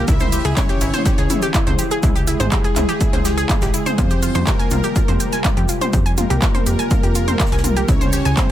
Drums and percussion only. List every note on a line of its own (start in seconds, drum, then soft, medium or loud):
0.08 kick loud
0.08 closed hi-hat medium
0.08 cabasa medium
0.08 shaker loud
0.20 closed hi-hat soft
0.20 mid tom loud
0.20 cabasa soft
0.32 closed hi-hat loud
0.32 open hi-hat medium
0.32 cabasa loud
0.45 closed hi-hat soft
0.45 cabasa soft
0.56 kick loud
0.56 snare loud
0.56 clap loud
0.56 closed hi-hat medium
0.56 mid tom loud
0.56 cabasa medium
0.56 shaker medium
0.69 snare medium
0.69 closed hi-hat soft
0.81 closed hi-hat loud
0.81 open hi-hat medium
0.81 cabasa medium
0.94 closed hi-hat soft
0.94 mid tom medium
0.94 cabasa soft
1.05 kick loud
1.05 snare loud
1.05 closed hi-hat medium
1.05 cabasa medium
1.05 shaker medium
1.18 snare soft
1.18 closed hi-hat soft
1.29 closed hi-hat loud
1.29 mid tom medium
1.29 cabasa medium
1.29 shaker medium
1.42 snare soft
1.42 closed hi-hat soft
1.42 cabasa soft
1.54 kick loud
1.54 snare loud
1.54 clap loud
1.54 closed hi-hat medium
1.54 cabasa medium
1.54 shaker medium
1.67 closed hi-hat soft
1.67 mid tom loud
1.79 closed hi-hat loud
1.79 cabasa medium
1.79 shaker medium
1.91 closed hi-hat soft
1.91 cabasa soft
2.03 kick loud
2.03 closed hi-hat medium
2.03 mid tom medium
2.03 cabasa soft
2.03 shaker medium
2.16 closed hi-hat soft
2.16 cabasa soft
2.27 closed hi-hat loud
2.27 cabasa medium
2.27 shaker medium
2.40 closed hi-hat soft
2.40 mid tom medium
2.40 cabasa soft
2.51 kick loud
2.51 snare loud
2.51 clap loud
2.51 closed hi-hat medium
2.51 cabasa soft
2.51 shaker medium
2.64 closed hi-hat soft
2.76 clap medium
2.76 closed hi-hat loud
2.76 mid tom medium
2.76 cabasa medium
2.76 shaker medium
2.89 closed hi-hat soft
2.89 cabasa soft
3.01 kick loud
3.01 closed hi-hat medium
3.01 cabasa soft
3.01 shaker medium
3.13 closed hi-hat soft
3.13 mid tom medium
3.25 snare loud
3.25 closed hi-hat loud
3.25 cabasa medium
3.25 shaker medium
3.38 closed hi-hat soft
3.38 cabasa soft
3.49 kick loud
3.49 clap loud
3.49 closed hi-hat medium
3.49 mid tom medium
3.49 cabasa medium
3.49 shaker medium
3.61 snare loud
3.61 closed hi-hat soft
3.61 cabasa soft
3.61 shaker medium
3.74 closed hi-hat loud
3.74 cabasa loud
3.86 closed hi-hat soft
3.86 mid tom loud
3.86 cabasa soft
3.86 shaker medium
3.98 kick loud
3.98 closed hi-hat medium
3.98 mid tom medium
3.98 cabasa medium
3.98 shaker medium
4.10 closed hi-hat soft
4.10 cabasa soft
4.23 closed hi-hat loud
4.23 open hi-hat medium
4.23 cabasa medium
4.35 closed hi-hat soft
4.35 mid tom medium
4.35 cabasa soft
4.47 kick loud
4.47 snare loud
4.47 clap loud
4.47 closed hi-hat medium
4.47 cabasa medium
4.47 shaker medium
4.59 snare medium
4.59 closed hi-hat soft
4.71 closed hi-hat loud
4.71 mid tom medium
4.71 cabasa medium
4.71 shaker medium
4.83 closed hi-hat soft
4.83 cabasa soft
4.96 kick loud
4.96 closed hi-hat medium
4.96 cabasa soft
4.96 shaker medium
5.08 closed hi-hat soft
5.08 mid tom medium
5.20 closed hi-hat loud
5.20 cabasa medium
5.20 shaker medium
5.32 snare soft
5.32 closed hi-hat soft
5.32 cabasa soft
5.44 kick loud
5.44 snare loud
5.44 clap loud
5.44 closed hi-hat medium
5.44 mid tom medium
5.44 cabasa medium
5.44 shaker medium
5.57 closed hi-hat soft
5.68 closed hi-hat loud
5.68 cabasa medium
5.68 shaker medium
5.81 closed hi-hat soft
5.81 mid tom medium
5.81 cabasa soft
5.93 kick loud
5.93 closed hi-hat medium
5.93 cabasa medium
5.93 shaker medium
6.06 closed hi-hat soft
6.06 cabasa soft
6.17 closed hi-hat loud
6.17 mid tom medium
6.17 cabasa loud
6.17 shaker medium
6.30 closed hi-hat soft
6.30 cabasa soft
6.42 kick loud
6.42 snare loud
6.42 clap loud
6.42 closed hi-hat medium
6.42 cabasa medium
6.42 shaker loud
6.55 closed hi-hat soft
6.55 mid tom medium
6.66 closed hi-hat loud
6.66 cabasa medium
6.66 shaker medium
6.79 closed hi-hat soft
6.79 cabasa soft
6.91 kick loud
6.91 closed hi-hat medium
6.91 mid tom medium
6.91 cabasa medium
6.91 shaker medium
7.03 closed hi-hat soft
7.15 closed hi-hat loud
7.15 cabasa loud
7.15 shaker medium
7.28 closed hi-hat soft
7.28 mid tom medium
7.28 cabasa soft
7.40 kick loud
7.40 snare loud
7.40 clap loud
7.40 closed hi-hat medium
7.40 cabasa medium
7.40 shaker medium
7.46 snare medium
7.46 shaker medium
7.52 snare medium
7.52 closed hi-hat soft
7.52 shaker medium
7.58 snare medium
7.58 shaker medium
7.64 closed hi-hat loud
7.64 mid tom medium
7.64 cabasa medium
7.64 shaker medium
7.76 closed hi-hat soft
7.76 cabasa soft
7.88 kick loud
7.88 closed hi-hat medium
7.88 cabasa medium
7.88 shaker medium
8.01 closed hi-hat soft
8.01 mid tom medium
8.01 cabasa soft
8.13 closed hi-hat loud
8.13 open hi-hat medium
8.13 cabasa loud
8.25 closed hi-hat soft
8.25 cabasa soft
8.37 kick loud
8.37 snare loud
8.37 clap loud
8.37 closed hi-hat medium
8.37 mid tom medium
8.37 cabasa medium
8.37 shaker loud